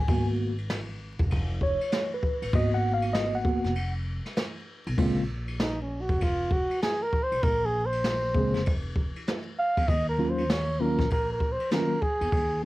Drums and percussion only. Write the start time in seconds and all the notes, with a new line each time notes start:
0.08 kick, ride
0.58 ride
0.70 snare, hi-hat pedal, ride
1.19 kick, ride
1.31 kick, ride
1.61 kick
1.81 ride
1.92 snare, hi-hat pedal, ride
2.23 kick
2.42 ride
2.53 kick, ride
3.02 ride
3.15 snare, hi-hat pedal, ride
3.45 kick
3.64 snare, ride
3.75 ride
4.26 snare, ride
4.36 snare, hi-hat pedal, ride
4.87 ride
4.98 kick, crash
5.48 ride
5.60 snare, hi-hat pedal, ride
6.09 kick, ride
6.21 kick, ride
6.51 kick
6.71 ride
6.82 snare, hi-hat pedal, ride
7.13 kick
7.32 ride
7.43 kick, ride
7.92 ride
8.04 snare, hi-hat pedal, ride
8.34 kick
8.54 snare, ride
8.66 kick, ride
8.96 kick
9.16 ride
9.27 snare, hi-hat pedal, ride
9.77 kick, ride
9.88 kick, ride
10.38 ride
10.50 snare, hi-hat pedal, ride
10.98 kick, snare, ride
11.10 kick, ride
11.40 kick
11.60 ride
11.71 snare, hi-hat pedal, ride
12.02 kick
12.21 ride
12.33 kick, ride